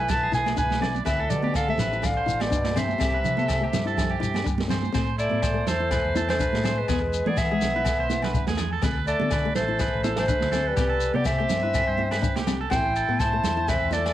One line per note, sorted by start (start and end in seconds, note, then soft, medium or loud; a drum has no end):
0.00 0.26 B1 medium
0.00 0.12 E3 medium
0.00 0.17 E4 medium
0.00 0.22 B4 medium
0.00 0.12 G#5 medium
0.09 0.35 E3 medium
0.09 0.34 A5 loud
0.09 kick medium
0.09 snare medium
0.09 low conga medium
0.09 low agogo medium
0.09 shekere medium
0.23 0.33 G#4 medium
0.32 0.54 B1 medium
0.32 0.51 E4 medium
0.32 0.57 G#4 medium
0.32 0.57 G#5 medium
0.32 snare soft
0.32 shekere medium
0.37 0.58 E3 medium
0.46 snare medium
0.46 high conga medium
0.46 low agogo medium
0.46 shekere soft
0.56 0.99 B1 medium
0.56 0.75 D4 medium
0.56 0.81 B4 medium
0.56 0.93 G#5 medium
0.56 kick medium
0.56 shekere medium
0.60 0.94 E3 medium
0.71 snare medium
0.71 high conga medium
0.80 1.00 C4 medium
0.80 1.05 D5 medium
0.80 snare medium
0.80 low conga medium
0.80 low agogo medium
0.95 high conga medium
0.95 shekere soft
1.05 1.27 D2 medium
1.05 1.35 A2 medium
1.05 1.24 C4 medium
1.05 1.18 B4 medium
1.05 1.31 E5 medium
1.05 kick medium
1.05 snare medium
1.05 low agogo medium
1.05 shekere medium
1.20 1.43 A4 medium
1.30 1.72 D3 medium
1.30 1.58 D5 medium
1.30 low conga medium
1.30 shekere medium
1.34 1.58 B2 medium
1.43 1.62 B3 medium
1.43 1.54 G4 medium
1.43 high conga medium
1.54 1.69 D3 medium
1.54 1.78 A4 medium
1.54 1.69 F5 medium
1.54 kick medium
1.54 snare medium
1.54 low agogo medium
1.54 shekere medium
1.68 2.08 C3 medium
1.68 1.87 A3 medium
1.68 2.07 E5 medium
1.78 2.19 A1 medium
1.78 2.02 B4 medium
1.78 snare medium
1.78 low conga medium
1.78 shekere medium
1.93 2.11 E4 medium
1.93 shekere soft
2.02 2.45 D3 medium
2.02 2.43 F5 medium
2.02 kick medium
2.02 snare medium
2.02 low conga medium
2.02 low agogo medium
2.02 shekere medium
2.17 2.40 C5 medium
2.26 2.53 A1 medium
2.26 2.45 E4 medium
2.26 shekere medium
2.40 2.80 B2 medium
2.40 2.80 D5 medium
2.40 snare medium
2.40 high conga medium
2.40 low agogo medium
2.40 shekere soft
2.50 2.94 G2 medium
2.50 2.70 D4 medium
2.50 kick medium
2.50 shekere medium
2.64 muted clean electric guitar stroke medium
2.64 snare medium
2.64 high conga medium
2.76 4.47 C3 medium
2.76 2.94 C4 medium
2.76 3.00 C5 medium
2.76 4.47 E5 medium
2.76 snare medium
2.76 low conga medium
2.76 low agogo medium
2.76 shekere medium
2.89 high conga medium
2.89 shekere soft
2.98 3.21 C2 medium
2.98 3.18 C4 medium
2.98 3.13 G4 medium
2.98 kick medium
2.98 snare medium
2.98 low agogo medium
2.98 shekere medium
3.14 3.37 B4 medium
3.24 3.66 C3 medium
3.24 low conga medium
3.24 shekere medium
3.37 3.56 B3 medium
3.37 3.61 A4 medium
3.37 high conga medium
3.37 shekere soft
3.48 kick medium
3.48 snare medium
3.48 low agogo medium
3.48 shekere medium
3.61 3.80 A3 medium
3.61 3.86 G4 medium
3.73 4.15 G2 medium
3.73 snare medium
3.73 high conga medium
3.73 low conga medium
3.73 shekere medium
3.85 4.04 E4 medium
3.85 4.10 A4 medium
3.85 shekere soft
3.97 kick medium
3.97 snare medium
3.97 low conga medium
3.97 low agogo medium
3.97 shekere medium
4.11 4.20 G4 medium
4.20 4.43 G2 medium
4.20 4.39 E4 medium
4.20 4.45 G4 medium
4.20 shekere medium
4.34 snare medium
4.34 high conga medium
4.34 low agogo medium
4.34 shekere soft
4.44 4.88 G2 medium
4.44 4.63 D4 medium
4.44 muted clean electric guitar stroke medium
4.44 kick medium
4.44 shekere medium
4.58 snare medium
4.58 high conga medium
4.68 4.87 C4 medium
4.68 4.93 C5 medium
4.68 snare medium
4.68 low conga medium
4.68 low agogo medium
4.68 shekere medium
4.83 high conga medium
4.83 shekere soft
4.92 5.27 A2 medium
4.92 5.12 C4 medium
4.92 5.18 C5 medium
4.92 kick medium
4.92 snare medium
4.92 low agogo medium
4.92 shekere medium
5.18 5.69 A3 medium
5.18 5.42 E4 medium
5.18 5.69 D5 medium
5.18 shekere medium
5.29 5.62 A2 medium
5.29 5.49 B3 medium
5.29 high conga medium
5.42 5.66 C5 medium
5.42 kick medium
5.42 snare medium
5.42 low agogo medium
5.42 shekere medium
5.54 5.73 A3 medium
5.67 5.99 E2 medium
5.67 6.30 A3 medium
5.67 5.90 A4 medium
5.67 6.29 C5 medium
5.67 snare medium
5.67 low conga medium
5.67 shekere medium
5.80 5.99 E4 medium
5.91 6.15 B4 medium
5.91 kick medium
5.91 snare medium
5.91 low agogo medium
5.91 shekere medium
6.05 6.46 E2 medium
6.15 6.34 E4 medium
6.15 6.40 A4 medium
6.15 high conga medium
6.15 shekere medium
6.29 6.81 A3 medium
6.29 6.80 C5 medium
6.29 snare medium
6.29 low conga medium
6.29 low agogo medium
6.39 6.58 D4 medium
6.39 6.63 B4 medium
6.39 kick medium
6.39 shekere medium
6.53 6.83 A2 medium
6.53 snare medium
6.53 high conga medium
6.63 6.82 C4 medium
6.63 6.88 C5 medium
6.63 snare medium
6.63 low conga medium
6.63 low agogo medium
6.63 shekere medium
6.79 7.31 G#3 medium
6.79 7.30 B4 medium
6.88 7.21 E2 medium
6.88 7.07 B3 medium
6.88 7.01 G#4 medium
6.88 kick medium
6.88 snare medium
6.88 low agogo medium
6.88 shekere medium
7.01 muted clean electric guitar stroke medium
7.13 shekere medium
7.26 7.56 E3 medium
7.26 7.45 A3 medium
7.26 7.50 G#4 medium
7.26 7.40 D5 medium
7.26 high conga medium
7.30 7.40 B3 medium
7.37 8.60 B3 medium
7.37 8.59 E5 loud
7.37 kick medium
7.37 snare medium
7.37 low agogo medium
7.37 shekere medium
7.51 7.70 G#3 medium
7.51 7.74 G#4 medium
7.61 7.93 B1 medium
7.61 snare medium
7.61 low conga medium
7.61 shekere medium
7.76 7.94 E4 medium
7.76 7.98 B4 medium
7.85 kick medium
7.85 snare medium
7.85 low agogo medium
7.85 shekere medium
7.99 8.40 B1 medium
7.99 8.23 C5 medium
8.10 8.28 E4 medium
8.10 snare soft
8.10 high conga medium
8.10 shekere medium
8.22 8.47 B4 medium
8.22 snare medium
8.22 low conga medium
8.22 low agogo medium
8.34 8.54 D4 medium
8.34 kick medium
8.34 shekere medium
8.47 8.77 E2 medium
8.47 8.71 G#4 medium
8.47 snare medium
8.47 high conga medium
8.57 snare medium
8.57 low conga medium
8.57 low agogo medium
8.57 shekere medium
8.73 8.83 A4 medium
8.82 9.15 D2 medium
8.82 9.01 C4 medium
8.82 9.06 B4 medium
8.82 kick medium
8.82 snare medium
8.82 low agogo medium
8.82 shekere medium
9.07 9.52 A3 medium
9.07 9.31 A4 medium
9.07 9.53 D5 medium
9.07 shekere medium
9.20 9.51 D3 medium
9.20 9.39 B3 medium
9.20 high conga medium
9.31 9.55 B4 medium
9.31 kick medium
9.31 snare medium
9.31 low agogo medium
9.31 shekere medium
9.45 9.64 A3 medium
9.56 9.88 A1 medium
9.56 10.14 A3 medium
9.56 9.79 A4 medium
9.56 10.14 C5 medium
9.56 snare medium
9.56 low conga medium
9.56 shekere medium
9.68 9.87 E4 medium
9.79 10.03 B4 medium
9.79 kick medium
9.79 snare medium
9.79 low agogo medium
9.79 shekere medium
9.94 10.35 A1 medium
10.04 10.23 E4 medium
10.04 10.27 A4 medium
10.04 snare soft
10.04 high conga medium
10.04 shekere medium
10.17 10.69 C5 medium
10.17 snare medium
10.17 low conga medium
10.17 low agogo medium
10.21 10.70 A3 medium
10.28 10.47 D4 medium
10.28 10.51 B4 medium
10.28 kick medium
10.28 shekere medium
10.41 10.72 D2 medium
10.41 snare medium
10.41 high conga medium
10.52 10.72 C4 medium
10.52 10.75 A4 medium
10.52 snare medium
10.52 low conga medium
10.52 low agogo medium
10.52 shekere medium
10.68 11.19 G3 medium
10.68 11.17 B4 medium
10.77 11.09 C2 loud
10.77 10.97 C4 medium
10.77 10.89 G4 medium
10.77 kick medium
10.77 snare medium
10.77 low agogo medium
10.77 shekere medium
10.89 11.13 A4 medium
11.01 shekere medium
11.14 11.44 C3 medium
11.14 11.34 B3 medium
11.14 11.27 B3 medium
11.14 11.37 G4 medium
11.14 11.26 D5 medium
11.14 high conga medium
11.25 12.44 C4 medium
11.25 12.43 E5 loud
11.25 kick medium
11.25 snare medium
11.25 low agogo medium
11.25 shekere medium
11.38 11.58 A3 medium
11.38 11.62 G4 medium
11.49 11.82 G2 medium
11.49 snare medium
11.49 high conga medium
11.49 low conga medium
11.49 shekere medium
11.63 11.82 E4 medium
11.63 11.86 B4 medium
11.74 kick medium
11.74 snare medium
11.74 low agogo medium
11.74 shekere medium
11.87 12.29 G2 medium
11.87 12.11 C5 medium
11.98 12.17 E4 medium
11.98 high conga medium
12.11 12.34 B4 medium
12.11 snare medium
12.11 low agogo medium
12.22 12.41 D4 medium
12.22 kick medium
12.22 shekere medium
12.36 12.66 C2 medium
12.36 12.59 G4 medium
12.36 snare medium
12.36 high conga medium
12.47 12.65 C4 medium
12.47 snare medium
12.47 low conga medium
12.47 low agogo medium
12.47 shekere medium
12.61 12.71 A4 medium
12.70 13.03 A1 medium
12.70 12.90 C4 medium
12.70 13.21 E4 medium
12.70 12.94 C5 medium
12.70 13.21 G5 medium
12.70 kick medium
12.70 snare medium
12.70 low agogo medium
12.70 shekere medium
12.96 13.19 A4 medium
12.96 shekere medium
13.08 13.38 A2 medium
13.08 13.27 B3 medium
13.20 13.72 E4 medium
13.20 13.43 C5 medium
13.20 13.71 A5 loud
13.20 kick medium
13.20 snare medium
13.20 low agogo medium
13.20 shekere medium
13.33 13.52 A3 medium
13.44 13.76 E2 medium
13.44 13.67 C5 medium
13.44 snare medium
13.44 low conga medium
13.44 shekere medium
13.57 13.75 E4 medium
13.68 13.96 C4 medium
13.68 13.92 B4 medium
13.68 13.95 E5 medium
13.68 kick medium
13.68 snare medium
13.68 low agogo medium
13.68 shekere loud
13.82 14.13 E2 medium
13.91 14.13 A3 medium
13.91 14.10 E4 medium
13.91 14.13 A4 medium
13.91 14.13 D5 medium
13.91 snare soft
13.91 high conga medium
13.91 shekere medium
14.06 snare medium
14.06 low agogo medium